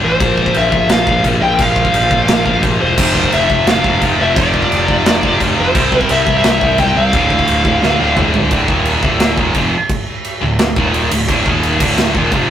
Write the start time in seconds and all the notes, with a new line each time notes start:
Already playing: G2 D3 G3
0.03 A1 C5
0.20 A#1 A#2 F3 A#3, kick, china
0.38 kick
0.46 kick
0.54 A#1 E5, china
0.72 A#1, kick
0.89 A#1 F5, snare, china
1.07 A#1 A#2 F3 A#3, kick
1.24 A#1 A#2 F3 A#3, kick, china
1.41 A#1 G5
1.59 A#1 A#2 F3 A#3 F5, kick, china
1.76 kick
1.85 kick
1.94 A#1, china
2.11 A#1, kick
2.28 A#1, snare, china
2.46 A#1 A#2 F3 A#3, kick
2.63 A#1 A#2 F3 A#3, kick, china
2.81 E1 C5
2.97 F1 F2 C3 F3, kick, crash, china
3.15 kick
3.24 kick
3.32 F1 E5, china
3.50 F1, kick
3.66 F1 F2 C3 F3 F5, snare, china
3.84 F1 F2 C3 F3, kick
4.02 F1 F2 C3 F3, kick, china
4.20 F1 E5
4.36 F1 F2 C3 F3 D5, kick, china
4.54 kick
4.62 kick
4.72 F1, china
4.88 F1, kick
5.04 F1 F2 C3 F3, snare, china
5.22 F1 F2 C3 F3, kick
5.40 F1 F2 C3 F3, kick, china
5.59 F1 C5
5.74 C2 C3 G3 C4, kick, china
5.92 kick
6.01 A#4, kick
6.09 C2 E5, china
6.27 C2, kick
6.37 E5
6.43 C2 C3 G3, snare, china
6.47 C4
6.61 C2 C3 G3 C4, kick
6.78 C2 C3 G3 C4 G5, kick, china
6.96 C2 F5
7.13 D1 D2 A2 D3, kick, china
7.30 kick
7.39 kick
7.47 D1, china
7.65 D1, kick
7.80 D1 D2 A2 D3, snare
7.99 D1 D2 A2 D3
8.16 D1 D2 A2 D3, kick, mid tom
8.34 D1, floor tom
8.51 D1 D2 A2 D3, kick, crash
8.68 D#1 D#2 A#2 D#3, kick
8.85 crash
9.02 D1 D2 A2 D3, kick
9.20 snare, crash
9.37 D#1 D#2 A#2 D#3, kick
9.54 F1 F2 C3 F3, kick, crash
9.89 kick, crash
10.24 crash
10.41 D1 D2 A2
10.59 D1 D2 A2, snare, crash
10.76 D#1 D#2 A#2 D#3, kick
10.94 crash
11.11 D1 D2 A2, crash
11.28 D1 D2 A2 D3, kick, crash
11.46 D#1 D#2 A#2 D#3, kick
11.63 crash
11.80 D1 D2 A2 D3, kick, crash
11.98 snare, crash
12.15 D#1 D#2 A#2 D#3, kick
12.31 F1 F2 C3 F3, kick, crash